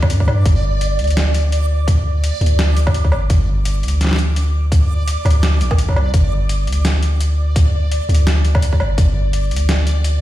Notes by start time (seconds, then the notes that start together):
Already playing: D2 D5
0.03 kick, low woodblock
0.10 G2, closed hi-hat
0.20 kick, low woodblock
0.27 G2, low woodblock
0.45 G1, kick, closed hi-hat
0.81 closed hi-hat
0.98 D2, closed hi-hat
1.04 closed hi-hat
1.07 closed hi-hat
1.10 closed hi-hat
1.17 snare, closed hi-hat
1.34 closed hi-hat
1.52 closed hi-hat
1.88 kick, closed hi-hat
2.24 closed hi-hat
2.41 D2, closed hi-hat
2.46 closed hi-hat
2.59 snare, closed hi-hat
2.77 closed hi-hat
2.87 kick, low woodblock
2.94 closed hi-hat
3.04 kick, low woodblock
3.12 G1, low woodblock
3.30 G1, kick, closed hi-hat
3.65 closed hi-hat
3.83 D2, closed hi-hat
3.88 closed hi-hat
4.01 snare, closed hi-hat
4.05 snare
4.07 snare
4.11 snare
4.13 snare
4.16 snare, closed hi-hat
4.36 closed hi-hat
4.72 kick, closed hi-hat
5.08 closed hi-hat
5.25 D2, kick, closed hi-hat, low woodblock
5.30 closed hi-hat
5.43 snare, closed hi-hat
5.60 A#1, closed hi-hat
5.71 kick, low woodblock
5.78 closed hi-hat
5.89 kick, low woodblock
5.91 low woodblock
5.93 low woodblock
5.94 C2, low woodblock
5.96 low woodblock
5.99 low woodblock
6.01 low woodblock
6.04 low woodblock
6.13 G1 D5, kick, closed hi-hat
6.49 closed hi-hat
6.67 D2, closed hi-hat
6.72 closed hi-hat
6.85 snare, closed hi-hat
7.03 closed hi-hat
7.21 closed hi-hat
7.56 kick, closed hi-hat
7.92 closed hi-hat
8.09 D2, closed hi-hat
8.14 closed hi-hat
8.27 snare, closed hi-hat
8.45 closed hi-hat
8.55 kick, low woodblock
8.62 closed hi-hat
8.73 kick, low woodblock
8.80 G1, low woodblock
8.98 G1, kick, closed hi-hat
9.33 closed hi-hat
9.51 D2, closed hi-hat
9.56 closed hi-hat
9.69 snare, closed hi-hat
9.87 closed hi-hat
10.04 closed hi-hat